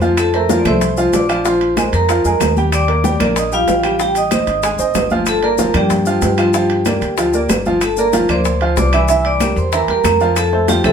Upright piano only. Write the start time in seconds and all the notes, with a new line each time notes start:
0.01 F3 F4 F5
0.34 A3 A4 C5
0.50 F3 F4 F5
0.66 A3 A4 C5
0.98 F3 F4 F5
1.29 F3 F4 F5
1.45 F3 F4 F5
1.77 G#3 G#4 A#4
2.10 F3 F4 F5
2.25 G#3 G#4 A#4
2.57 G3 G4 G5
2.88 A#3 A#4 D5
3.04 G3 G4 G5
3.20 A#3 A#4 D5
3.52 G3 G4 G5
3.84 G3 G4 G5
3.99 G3 G4 G5
4.31 C4 C5 D#5
4.63 G#3 G#4 G#5
4.79 C4 C5 D#5
5.11 F3 F4 F5
5.43 A#3 A#4 D5
5.59 F3 F4 F5
5.75 A#3 A#4 D5
6.06 F3 F4 F5
6.38 F3 F4 F5
6.54 F3 F4 F5
6.86 A#3 A#4 D5
7.18 F3 F4 F5
7.34 A#3 A#4 D5
7.66 F3 F4 F5
7.98 A#3 A#4 D5
8.14 F3 F4 F5
8.29 A#3 A#4 D5
8.61 F3 F4 F5
8.94 E3 E4 E5
9.09 E3 E4 E5
9.41 G3 G4 A#4
9.73 E3 E4 E5
9.89 G3 G4 A#4
10.20 F3 F4 F5
10.53 A3 A4 C5
10.68 F3 F4 F5
10.84 A3 A4 C5